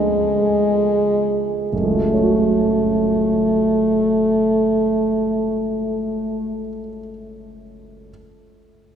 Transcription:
Already playing: C#2 F3 G#3 B3 D4
1.72 F#1 A3
1.83 C#2
1.93 F#3
2.03 A3
2.14 C#4
2.24 F#4

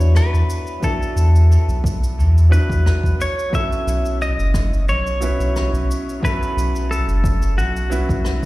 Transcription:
Already playing: F#3 B3 D4 E4 A4 B4 C#5
0.00 E2, cabasa
0.15 B4, cross-stick, cabasa
0.34 E2, cabasa
0.50 cabasa
0.67 cabasa
0.80 F#3 B3 D4, kick, cabasa
0.84 E4 A4
1.02 cabasa
1.16 E2, cabasa
1.36 cabasa
1.52 cabasa
1.68 B1, cabasa
1.84 kick, cabasa
2.03 cabasa
2.18 E2, cabasa
2.38 cabasa
2.49 F#3 B3 D4 E4 B4, cabasa
2.70 E2, kick, cabasa
2.86 cross-stick, cabasa
3.03 E2, kick, cabasa
3.21 C#5, cabasa
3.39 cabasa
3.49 F#3 B3 C#4, kick
3.54 E4 A4 E5, cabasa
3.72 cabasa
3.87 B1, cabasa
4.05 cabasa
4.22 D#5, cabasa
4.38 F#1, cabasa
4.54 kick, cross-stick, cabasa
4.73 cabasa
4.88 B1 C#5, cabasa
5.07 cabasa
5.20 F#3 B3 C#4 E4 B4, cabasa
5.39 B1, cabasa
5.56 cross-stick, cabasa
5.73 B1, cabasa
5.91 cabasa
6.09 cabasa
6.20 F#3 B3 C#4, kick
6.25 E4 A4 B4, cabasa
6.43 cabasa
6.56 B1, cabasa
6.76 cabasa
6.91 A4, cabasa
7.08 F#1, cabasa
7.24 kick, cabasa
7.42 cabasa
7.57 B1 F#4, cabasa
7.76 cabasa
7.90 F#3 B3 C#4 E4 B4, cabasa
8.09 B1, kick, cabasa
8.25 cross-stick, cabasa

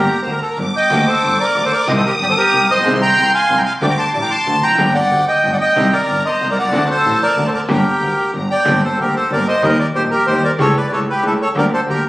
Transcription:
Already playing: G4 A#4 A#5
0.22 D2 D3 C5
0.31 A#4
0.42 A4
0.50 A#4
0.57 G1 G2 D6
0.76 D#5 G5
0.90 D2 D3 A3 A#3 G4 A4
1.07 A4 C5
1.22 G1 G2 A#3 G4 A4
1.40 A#4 D5
1.55 D2 D3 A#3 G4 A4
1.65 A4 C5
1.73 A#4 D5
1.87 C2 C3 D#3 G3 C4 D#4 G4 C5 D#5 D#6
1.98 A4 C5
2.05 G4 A#4
2.20 G1 G2 C4 D#4 G4 D5
2.29 A4 C5
2.37 G4 A#4
2.52 C2 C3 C4 D#4 G4
2.69 A#1 C5 D#5
2.73 A1
2.77 A#1 B1
2.84 C2 C3 D#3 G#3 C4 D#4 G#4 C6
2.95 C6
3.02 G5 A#5
3.16 C2 C3 C4 D#4 G#4
3.34 F5 G#5
3.48 C2 C3 C4 D#4 G#4
3.58 G5 A#5
3.65 F5 G#5
3.81 D2 D3 G3 A3 D4 G4 D5 G5 D6
3.90 G5 A#5
3.98 A5 C6
4.13 A1 A2 A3 D4 G4 D5 A5 D6
4.21 G5 A#5
4.30 A5 C6
4.46 D2 D3 A3 D4 F#4 A5
4.63 F1 G5 A#5
4.67 E2
4.71 F2 F#2
4.78 G1 G2 D3 G3 A#3 D4 G4 G5
4.94 D5 F#5
5.11 D2 D3 A#3 D4 G4
5.28 D#5 G5
5.43 G1 G2 A#3 D4 G4
5.53 D5 F#5
5.61 D#5 G5
5.76 C2 C3 D#3 G3 C4 D#4 G4 A#5
5.93 A#4 D5
6.08 G1 G2 C4 D#4 G4
6.25 C5 D#5
6.41 C2 C3 C4 D#4 G4
6.50 A#4 D5
6.57 B1 C2 D5 F#5
6.64 C2
6.69 C#2 D2 D3 C4 D4 A5
6.73 D2 A3 F#4
6.90 A4 C5
7.05 A1 A2 C4 D4 F#4
7.22 A#4 D5
7.37 D2 D3 C4 D4 F#4
7.47 A4 C5
7.54 A#4 D5
7.68 G1 G2 D3 G3 A#3 D4 G4 A#4 G5
8.00 D2 D3 A#3 D4 G4
8.34 G1 G2 A#3 D4 G4 A#5
8.51 D5 G5
8.65 G1 G2 D3 G3 A#3 D4 G4
8.84 A4 C5
8.98 D2 D3 G3 A#3 D4 G4 A#4
9.16 A4 C5
9.30 G1 G2 D3 G3 A#3 D4 G4 A#4 D5
9.48 C5 D#5
9.62 D#2 D#3 G3 A#3 D#4 G4 A#4 D#5
9.79 A#4 D5
9.95 A#1 A#2 D#3 G3 A#3 D#4 G4 C5
10.11 G4 A#4
10.27 D#2 D#3 G3 A#3 D#4 G4 C5
10.44 A#4 D5
10.59 C#2 C#3 E3 A3 C#4 G4 A4 C#5
10.77 B4 D5
10.88 C#2 C#3 E3 A3 C#4 G4 D5
10.92 C#2 A4 C#5
11.10 G4 B4
11.23 C#2 C#3 E3 A3 C#4 G4 A4
11.27 E4
11.42 A4 C#5
11.55 D2 D3 G3 A#3 D4 G4 A#4 D5
11.74 A4 C5
11.87 D2 D3 G3 A#3 D4 G4 A#4

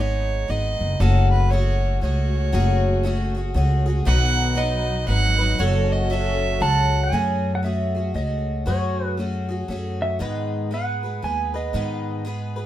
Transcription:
Already playing: G#1 G#3
0.00 B3 D#4 G#4 C#5
0.48 G#1 G#3 B3 D#4 G#4 D#5
0.81 F#1
1.00 F#1 F#3 A3 C#4 F#4 G#4 A4
1.31 B4
1.50 A3 C#4 F#4 G#4 C#5
2.01 C#2 A3 C#4 F#4 G#4 C#5
2.52 F#1 F#3 A3 C#4 F#4 G#4
3.03 A3 C#4 F#4 G#4
3.35 C#4 F#4 G#4
3.54 C#2 A3 C#4 F#4 G#4
3.86 C#4 F#4 G#4
4.05 B1 B2 D#3 F#3 B3 D#4 B4 F#5
4.55 F#3 B3 D#4 B4 D#5
5.07 G#1 F#3 B3 D#4 B4 F#5
5.39 F#3 B3 D#4 B4
5.58 F#1 F#3 C#4 F#4 A4 C#5
5.92 D#5
6.10 F#3 C#4 F#4 A4 E5
6.60 C#2 F#3 C#4 F#4 A4 F#5 A5
7.04 G#5
7.12 F#2 F#3 A3 C#4 F#4 G#4
7.55 F#5
7.63 A3 C#4 F#4 G#4 E5
7.95 C#4 F#4 G#4
8.14 C#2 A3 C#4 F#4 G#4 D#5
8.66 F#2 F#3 A3 C#4 F#4 G#4 C#5
9.17 A3 C#4 F#4 G#4
9.49 C#4 F#4 G#4
9.68 F#2 A3 C#4 F#4 G#4
10.02 E5
10.19 G#2 D#3 G#3 B3 G#4 B4 D#5
10.71 G#3 B3 G#4 B4 F#5
11.03 G#3 B3 G#4 B4
11.22 D#2 G#3 B3 G#4 B4 G#5
11.54 G#3 B3 G#4 B4 D#5
11.73 G#2 D#3 G#3 B3 G#4 B4
12.25 G#3 B3 G#4 B4
12.56 G#3 B3 G#4 B4

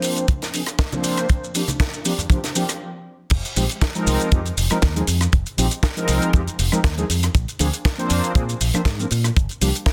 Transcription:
Already playing: F3 A#3 C4 D4 C5
0.02 open hi-hat, maracas, shaker
0.16 closed hi-hat, maracas, shaker
0.28 kick, closed hi-hat, high conga, maracas, shaker
0.42 snare, closed hi-hat, shaker
0.53 F3 A#3 C4 D4 G#4, open hi-hat, maracas, shaker
0.66 cross-stick, closed hi-hat, shaker, maracas
0.79 kick, snare, closed hi-hat, maracas, shaker
0.92 F3 A#3 C4 D4 C5, high bongo, high conga, shaker
1.04 open hi-hat, shaker, maracas
1.17 cross-stick, closed hi-hat, shaker, maracas
1.29 kick, closed hi-hat, shaker, maracas
1.44 shaker
1.54 F3 A#3 C4 D4 G4, open hi-hat, shaker, maracas
1.68 closed hi-hat, high bongo, high conga, maracas, shaker
1.80 kick, snare, closed hi-hat, maracas, shaker
1.94 shaker
2.05 F3 A#3 C4 D4 G4, open hi-hat, maracas, shaker
2.18 closed hi-hat, low conga, maracas, shaker
2.30 F3 A#3 C4 D4 G4, kick, closed hi-hat, high conga, maracas, shaker
2.44 snare, closed hi-hat, shaker
2.55 F3 A#3 C4 D4 G4, open hi-hat, high bongo, maracas, shaker
2.69 cross-stick, closed hi-hat, shaker, maracas
3.30 F1, kick, closed hi-hat, crash, shaker
3.45 closed hi-hat, shaker
3.56 A#1 F3 G#3 C4 D#4 G4, open hi-hat, shaker
3.69 closed hi-hat, shaker
3.81 kick, snare, closed hi-hat, shaker
3.95 F3 G#3 C4 D#4 A#4, closed hi-hat, shaker
4.07 C2, open hi-hat, shaker
4.20 closed hi-hat, shaker
4.31 F2 F3 G#3 C4 D#4 G4, kick, closed hi-hat, shaker
4.46 closed hi-hat, shaker
4.57 F1, open hi-hat, shaker
4.70 F3 G#3 C4 D#4 A#4, muted fingered electric bass stroke, cross-stick, closed hi-hat, shaker
4.82 D#2, kick, snare, closed hi-hat, shaker
4.95 F3 G#3 C4 D#4 G#4, closed hi-hat, shaker
5.07 F2, open hi-hat, shaker
5.21 cross-stick, closed hi-hat, shaker
5.33 F1, kick, closed hi-hat, shaker
5.46 closed hi-hat, shaker
5.57 A#1 F3 G#3 C4 D#4 G4, open hi-hat, shaker
5.71 closed hi-hat, shaker
5.83 kick, snare, closed hi-hat, shaker
5.96 F3 G#3 C4 D#4 A#4, closed hi-hat, shaker
6.08 C2, open hi-hat, shaker
6.22 closed hi-hat, shaker
6.33 F2 F3 G#3 C4 D#4 G4, kick, closed hi-hat, shaker
6.47 muted fingered electric bass stroke, closed hi-hat, shaker
6.59 F1, open hi-hat, shaker
6.72 F3 G#3 C4 D#4 A#4, cross-stick, closed hi-hat, shaker
6.84 D#2, kick, snare, closed hi-hat, shaker
6.97 F3 G#3 C4 D#4 G#4, closed hi-hat, shaker
7.09 F2, open hi-hat, shaker
7.23 cross-stick, closed hi-hat, shaker
7.35 A#1, kick, closed hi-hat, shaker
7.48 closed hi-hat, shaker
7.59 D2 F3 A#3 C4 D4 G#4, open hi-hat, shaker
7.73 closed hi-hat, shaker
7.85 kick, snare, closed hi-hat, shaker
7.98 F3 A#3 C4 D4 C5, closed hi-hat, shaker
8.10 F2, open hi-hat, shaker
8.24 closed hi-hat, shaker
8.35 A#2 F3 A#3 C4 D4 G#4, kick, closed hi-hat, shaker
8.49 closed hi-hat, shaker
8.61 A#1, open hi-hat, shaker
8.74 F3 A#3 C4 D4 C5, cross-stick, closed hi-hat, shaker
8.85 G#2, kick, snare, closed hi-hat, shaker
8.99 F3 A#3 C4 D4 A#4, closed hi-hat, shaker
9.11 A#2, open hi-hat, shaker
9.24 cross-stick, closed hi-hat, shaker
9.37 G1, kick, closed hi-hat, shaker
9.49 closed hi-hat, shaker
9.61 C2 F3 G3 A#3 D4 G4, open hi-hat, shaker
9.75 closed hi-hat, shaker
9.86 kick, snare, closed hi-hat, shaker

